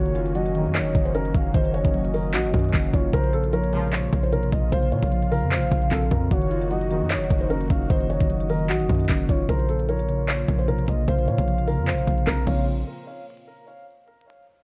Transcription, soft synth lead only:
0.00 0.33 C#5 loud
0.35 1.30 D#5 loud
1.34 1.53 F5 medium
1.54 2.89 D#5 loud
2.93 3.12 C#5 medium
3.13 3.51 C5 loud
3.53 4.48 C#5 medium
4.52 4.71 D#5 medium
4.72 6.27 F5 loud
6.31 6.68 C#5 loud
6.71 7.66 D#5 medium
7.70 7.89 F5 medium
7.90 9.25 D#5 loud
9.29 9.48 C#5 medium
9.49 9.86 C5 loud
9.89 10.84 C#5 medium
10.88 11.07 D#5 medium
11.08 12.43 F5 loud
12.47 12.66 F5 medium

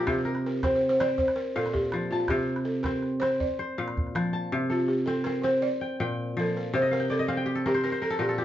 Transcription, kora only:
0.00 0.12 A#2 medium
0.00 0.12 F3 medium
0.00 0.56 C4 medium
0.00 1.09 D4 medium
0.00 1.12 D#4 medium
0.00 1.11 F4 medium
0.00 1.38 G4 medium
0.00 0.31 A4 medium
0.00 0.25 A#4 medium
0.00 0.42 C5 medium
0.07 1.23 C3 medium
0.25 1.52 A#4 medium
0.63 1.00 C4 medium
1.01 2.81 C4 medium
1.56 2.34 A#2 medium
1.56 2.55 F5 medium
1.93 2.34 F3 medium
2.12 2.99 A5 medium
2.30 3.46 C3 medium
2.85 3.22 C4 medium
3.22 5.02 C4 medium
3.59 4.78 C5 medium
3.78 4.57 A#2 medium
3.78 4.78 F5 medium
4.15 4.57 F3 medium
4.33 5.20 A5 medium
4.52 5.67 C3 medium
4.70 6.06 A4 medium
5.07 5.26 C4 medium
5.26 5.44 C4 medium
5.44 7.24 C4 medium
5.81 6.00 G5 medium
6.00 6.78 A#2 medium
6.00 6.93 G5 medium
6.37 6.78 F3 medium
6.74 7.89 C3 medium
6.82 7.16 D#5 medium
6.91 7.28 F5 medium
7.00 7.37 G5 medium
7.10 8.21 D5 medium
7.19 8.26 D#5 medium
7.28 7.65 C4 medium
7.28 8.28 F5 medium
7.37 8.30 G5 medium
7.46 8.38 G4 medium
7.55 7.89 A4 medium
7.66 8.45 C4 medium
7.66 7.83 A#4 medium
7.74 7.92 C5 medium
7.83 8.01 A#4 medium
7.92 8.45 C5 medium
8.02 8.19 A#4 medium
8.10 8.28 A4 medium
8.19 8.45 A#2 medium
8.19 8.45 A#4 medium
8.29 8.45 A4 medium
8.38 8.45 G4 medium

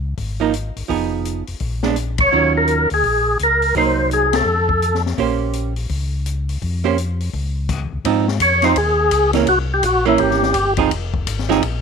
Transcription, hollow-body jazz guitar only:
0.40 0.52 F3 medium
0.40 0.52 A#3 medium
0.40 0.52 D#4 medium
0.88 1.43 F3 soft
0.88 1.43 B3 soft
0.88 1.43 D#4 soft
0.88 1.43 G#4 soft
1.83 1.95 G#3 medium
1.83 1.95 B3 medium
1.83 1.96 D4 medium
2.32 2.86 D#3 soft
2.32 2.86 F#3 soft
2.32 2.86 C#4 soft
2.32 2.87 F4 soft
3.76 4.29 F#3 soft
3.76 4.30 A#3 medium
3.76 4.30 D#4 medium
5.18 5.72 A#3 medium
5.18 5.72 C#4 soft
5.18 5.73 G4 medium
5.18 5.73 C5 medium
6.84 6.96 A#3 medium
6.84 6.96 C#4 medium
6.84 6.96 G4 medium
6.84 6.97 C5 medium
8.05 8.25 F3 medium
8.05 8.25 C4 medium
8.05 8.26 D#4 medium
8.63 8.75 F3 medium
8.63 8.75 C4 medium
8.63 8.75 D#4 medium
9.34 9.46 E3 medium
9.34 9.47 A#3 medium
9.34 9.47 C#4 medium
10.05 10.52 E3 medium
10.05 10.52 A#3 medium
10.05 10.53 C#4 medium
10.78 10.89 F3 medium
10.78 10.90 C4 medium
10.78 10.90 D#4 medium
10.78 10.90 G#4 medium
11.49 11.61 F3 medium
11.49 11.61 C4 medium
11.49 11.61 D#4 medium
11.49 11.61 G#4 medium

